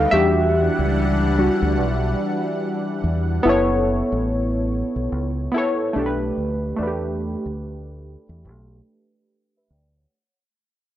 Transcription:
Already playing: G3 A3 B3 D#4 G4 A4 F5
0.11 E2 E3 G3 D4 F#4 G4 E5 F#5
0.79 C#2
1.38 G3 D4 F#4
1.62 D2
1.79 B1
3.04 E2
3.43 F#1 B3 E4 A4
3.49 C#5
4.12 A1
4.96 B1
5.12 C#2
5.52 B3 E4
5.56 A4 C#5
5.93 B1 A3 D4
5.97 G4 A4
6.06 B4
6.38 D2
6.76 E2 A3 D4
6.81 F#4 B4
6.87 G4
7.46 D2
8.29 E2
8.45 B1
9.57 B4 E5
9.70 D2 D5 G5

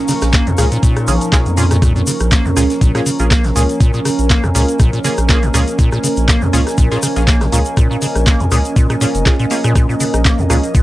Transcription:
Already playing: F3 A#3 C#4 D#4 A#4 F5 C#6
0.08 C#3, snare, closed hi-hat, open hi-hat, shaker
0.21 A#1, cross-stick, snare, closed hi-hat, shaker
0.33 A#3, kick, snare, clap, closed hi-hat, shaker
0.47 F2 G#2, closed hi-hat, shaker
0.58 C#2 A#2 A#3 C#4 F4 G#4, cross-stick, closed hi-hat, open hi-hat, shaker
0.71 A#2, closed hi-hat, shaker
0.83 A#2, kick, closed hi-hat, shaker
0.96 cross-stick, closed hi-hat, shaker
1.07 A#1 F3 A#3 C#4 F4 G#4, closed hi-hat, open hi-hat, shaker
1.21 closed hi-hat, shaker
1.32 A#2 A#3 C#4 F4 G#4, kick, cross-stick, snare, clap, closed hi-hat, shaker
1.46 F2 A#3, closed hi-hat, shaker
1.57 A#2 A#3 C#4 F4 G#4, closed hi-hat, open hi-hat, shaker
1.71 A#2, cross-stick, closed hi-hat, shaker
1.82 A#2 A#4, kick, cross-stick, closed hi-hat, shaker
1.96 A#2, shaker
2.07 C#3, closed hi-hat, open hi-hat, shaker
2.20 A#1, cross-stick, closed hi-hat, shaker
2.32 A#3, kick, snare, clap, closed hi-hat, shaker
2.45 F2 G#2, shaker
2.56 C#2 A#2 A#3 C#4 F4 G#4, cross-stick, snare, closed hi-hat, open hi-hat, shaker
2.70 snare, closed hi-hat, shaker
2.81 A#1 A#2, kick, closed hi-hat, shaker
2.95 A#2 A#3 C#4 F4 G#4, cross-stick, snare, closed hi-hat, shaker
3.01 G#5
3.06 C#3, closed hi-hat, open hi-hat, shaker
3.19 A#1 A#3 C#4 F4 G#4, closed hi-hat, shaker
3.30 A#3, kick, cross-stick, snare, clap, closed hi-hat, shaker
3.44 G#2, snare, closed hi-hat, shaker
3.56 C#2 A#2 A#3 C#4 F4 G#4, closed hi-hat, open hi-hat, shaker
3.69 closed hi-hat, shaker
3.80 A#2, kick, closed hi-hat, shaker
3.93 A#2 D#5, shaker
4.05 C#3, cross-stick, snare, closed hi-hat, open hi-hat, shaker
4.19 A#1, closed hi-hat, shaker
4.30 A#3, kick, snare, clap, closed hi-hat, shaker
4.43 F2 G#2, cross-stick, shaker
4.55 C#2 A#2 A#3 C#4 F4 G#4, closed hi-hat, open hi-hat, shaker
4.68 closed hi-hat, shaker
4.79 A#1 A#2, kick, cross-stick, closed hi-hat, shaker
4.93 A#2, closed hi-hat, shaker
5.04 C#3 A#3 C#4 F4 G#4, closed hi-hat, open hi-hat, shaker
5.17 A#1, cross-stick, closed hi-hat, shaker
5.29 A#3 C#4 F4 G#4, kick, snare, clap, closed hi-hat, shaker
5.43 G#2, closed hi-hat, shaker
5.54 C#2 A#2 A#3 C#4 F4 G#4, cross-stick, closed hi-hat, open hi-hat, shaker
5.67 closed hi-hat, shaker
5.79 A#2, kick, closed hi-hat, shaker
5.92 A#2, cross-stick, shaker
6.03 C#3, closed hi-hat, open hi-hat, shaker
6.16 A#1, closed hi-hat, shaker
6.28 A#3, kick, cross-stick, snare, clap, closed hi-hat, shaker
6.42 F2 G#2, shaker
6.53 C#2 A#2 A#3 C#4 F4 G#4, closed hi-hat, open hi-hat, shaker
6.67 cross-stick, snare, closed hi-hat, shaker
6.78 A#1 A#2, kick, closed hi-hat, shaker
6.91 A#2 A#3 C#4 F4 G#4, snare, closed hi-hat, shaker
7.02 C#3, cross-stick, closed hi-hat, open hi-hat, shaker
7.16 A#1 A#3 C#4 F4 G#4, closed hi-hat, shaker
7.27 A#3, kick, snare, clap, closed hi-hat, shaker
7.41 G#2, cross-stick, snare, closed hi-hat, shaker
7.52 C#2 A#2 A#3 C#4 F4 G#4, closed hi-hat, open hi-hat, shaker
7.65 closed hi-hat, shaker
7.77 A#2, kick, cross-stick, closed hi-hat, shaker
7.91 A#2, shaker
8.01 C#3, snare, closed hi-hat, open hi-hat, shaker
8.15 A#1, cross-stick, closed hi-hat, shaker
8.26 A#3, kick, snare, clap, closed hi-hat, shaker
8.40 F2 G#2, closed hi-hat, shaker
8.51 C#2 A#2 A#3 C#4 F4 G#4, cross-stick, closed hi-hat, open hi-hat, shaker
8.65 closed hi-hat, shaker
8.76 A#2, kick, closed hi-hat, shaker
8.90 A#2, cross-stick, closed hi-hat, shaker
9.01 A#2 A#3 C#4 F4 G#4, closed hi-hat, open hi-hat, shaker
9.15 F1, closed hi-hat, shaker
9.26 A#2 A#3 C#4 F4 G#4, kick, cross-stick, snare, clap, closed hi-hat, shaker
9.39 A#2, closed hi-hat, shaker
9.50 A#3 C#4 F4 G#4, closed hi-hat, open hi-hat, shaker
9.64 A#2, cross-stick, closed hi-hat, shaker
9.76 A#2 D#4, kick, cross-stick, closed hi-hat, shaker
9.89 A#2, shaker
10.00 C#3, closed hi-hat, open hi-hat, shaker
10.14 A#1, cross-stick, closed hi-hat, shaker
10.25 A#3, kick, snare, clap, closed hi-hat, shaker
10.39 F2 G#2, shaker
10.50 C#2 A#2 A#3 C#4 F4 G#4, cross-stick, snare, closed hi-hat, open hi-hat, shaker
10.63 closed hi-hat, shaker
10.75 A#1 A#2, kick, closed hi-hat, shaker

